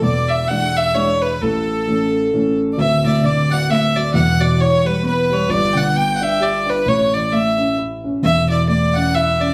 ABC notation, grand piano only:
X:1
M:3/4
L:1/8
Q:"Swing" 1/4=132
K:A
V:1 name="Grand piano" clef=bass
[E,,,E,,]2 [E,G,D]2 [E,G,D]2 | [A,,,A,,]2 [E,A,C]2 [E,A,C]2 | [K:D] [D,,,D,,] A,, D, F, A, F, | [E,,,E,,] B,, E, G, B, G, |
[G,,,G,,] D, B, D G D | [A,,,A,,] E, A, C E C | [E,,,E,,] E, A, C E C |]